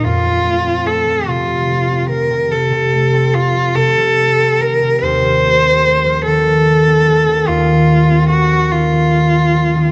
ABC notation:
X:1
M:12/8
L:1/16
Q:3/8=48
K:Fphr
V:1 name="Cello"
F4 =A2 F4 B2 A4 F2 A4 B2 | c6 =A6 F4 G2 F6 |]
V:2 name="Harp" clef=bass
F,, F, =A, C A, F, C, F, A, C F, C, F, C, A, C A, F, C, F, A, C F, C, | E,, F, =A, C A, F, E, F, A, C F, E, E,, F, A, C A, F, E, F, A, C F, E, |]